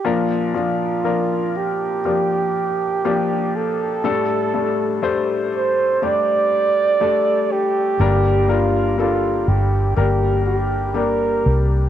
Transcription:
<<
  \new Staff \with { instrumentName = "Flugelhorn" } { \time 4/4 \key bes \major \tempo 4 = 60 f'8 f'4 g'2 a'8~ | a'4~ a'16 r16 c''8 d''4. g'8~ | g'8 f'8 f'8 g'8 g'8 g'8 bes'8. r16 | }
  \new Staff \with { instrumentName = "Upright piano" } { \time 4/4 \key bes \major <f bes d' bes'>8 <f bes d' f'>8 <f bes d' bes'>4 <f bes d' g'>4 <f bes d' g'>4 | <g a d' a'>8 <g a d' a'>8 <g a d' c''>4 <g a d' g'>4 <g a d' a'>4 | <g bes d' bes'>8 <g bes d' bes'>8 <g bes d' a'>4 <g bes d' bes'>4 <g bes d' g'>4 | }
  \new Staff \with { instrumentName = "Upright piano" } { \clef bass \time 4/4 \key bes \major bes,4. r2 r8 | a,4. r2 r8 | <g, d>4. r2 r8 | }
  \new Staff \with { instrumentName = "Fingered electric bass" } { \clef bass \time 4/4 \key bes \major r1 | r1 | g,,4. g,,8 g,,4. c,8 | }
>>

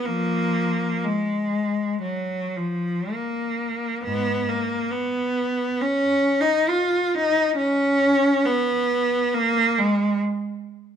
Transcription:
\new Staff \with { instrumentName = "Cello" } { \time 4/4 \key bes \phrygian \tempo 4 = 68 <f bes>4 aes4 ges8 f8 bes4 | <aes, ces'>8 bes8 ces'4 \tuplet 3/2 { des'4 ees'8 } f'8 ees'8 | des'4 ces'4 bes8 aes8 r4 | }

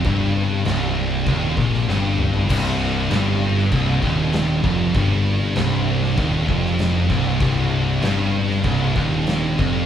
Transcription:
<<
  \new Staff \with { instrumentName = "Tonewheel organ" } { \clef bass \time 4/4 \key c \minor \tempo 4 = 98 <c g d'>1 | <c g d'>1~ | <c g d'>1~ | <c g d'>1 | }
  \new Staff \with { instrumentName = "Distorted electric guitar" } { \clef bass \time 4/4 \key c \minor g,4 c,4 ees,8 bes,8 g,4 | c,4 g,4 c,8 ees,4 f,8 | g,4 c,4 ees,8 f,4 c,8 | c,4 g,4 c,8 ees,4 f,8 | }
  \new Staff \with { instrumentName = "Distorted electric guitar" } { \clef bass \time 4/4 \key c \minor g,4 c,4 ees,8 bes,8 g,4 | c,4 g,4 c,8 ees,4 f,8 | g,4 c,4 ees,8 f,4 c,8 | c,4 g,4 c,8 ees,4 f,8 | }
  \new Staff \with { instrumentName = "Distorted electric guitar" } { \clef bass \time 4/4 \key c \minor g,4 c,4 ees,8 bes,8 g,4 | c,4 g,4 c,8 ees,4 f,8 | g,4 c,4 ees,8 f,4 c,8 | c,4 g,4 c,8 ees,4 f,8 | }
  \new Staff \with { instrumentName = "Picked electric bass" } { \clef bass \time 4/4 \key c \minor g,,4 c,,4 ees,,8 bes,,8 g,,4 | c,,4 g,,4 c,,8 ees,,4 f,,8 | g,,4 c,,4 ees,,8 f,,4 c,,8 | c,,4 g,,4 c,,8 ees,,4 f,,8 | }
  \new DrumStaff \with { instrumentName = "Drums" } \drummode { \time 4/4 <cymc bd>4 <cymc sn>4 <cymc bd>8 bd16 sn16 sn8 toml16 tomfh16 | <cymc bd>4 <cymc sn>8. sn16 <cymc bd>8 bd8 <cymc sn>8 bd8 | <cymc bd>4 <cymc sn>8. sn16 <cymc bd>8 bd16 sn16 <cymc sn>8 bd8 | <cymc bd>4 <cymc sn>8. sn16 <cymc bd>8 bd8 <cymc sn>8 bd8 | }
>>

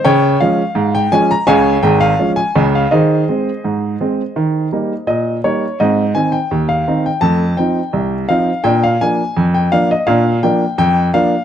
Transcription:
<<
  \new Staff \with { instrumentName = "Upright piano" } { \time 2/4 \key aes \major \tempo 4 = 84 << { g''8 f''8. g''16 aes''16 bes''16 | aes''8 g''16 f''8 aes''8 f''16 | ees''2~ | ees''4 ees''8 des''8 |
ees''8 aes''16 g''8 f''8 g''16 | a''8 g''4 f''8 | g''16 f''16 aes''8. g''16 f''16 ees''16 | f''8 g''8 g''8 f''8 | } \\ { des''8 r4. | <des'' f''>8 r4. | <aes' c''>2~ | <aes' c''>4. r8 |
r2 | r2 | r2 | r2 | } >> }
  \new Staff \with { instrumentName = "Upright piano" } { \clef bass \time 2/4 \key aes \major des8 <f aes des'>8 aes,8 <f aes des'>8 | <des, des>8 <aes,, aes,>8 <f aes des'>8 <des, des>8 | ees8 <aes c'>8 aes,8 <aes c'>8 | ees8 <g bes ees'>8 bes,8 <g bes ees'>8 |
<aes, c'>8 <ees c' ees'>8 ees,8 <ees c' ees'>8 | <f, a>8 <f c' ees'>8 c,8 <f c' ees'>8 | <bes, d'>8 <f bes d'>8 f,8 <f bes d'>8 | <bes, d'>8 <f bes d'>8 f,8 <f bes d'>8 | }
>>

